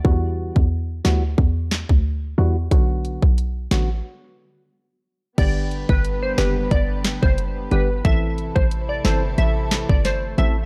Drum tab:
CC |----------------|----------------|x---------------|----------------|
HH |----------------|x-x-x-x---------|x-x-x-x-x-x-x-x-|x-x-x-x-x-x-x-x-|
CP |------x---x-----|------x---------|------x---x-----|------x---x-----|
SD |------o---o-----|------o---------|------o---o-----|------o---o-o---|
BD |o--o----o--o----|o--o------------|o--o----o--o----|o--o-------o----|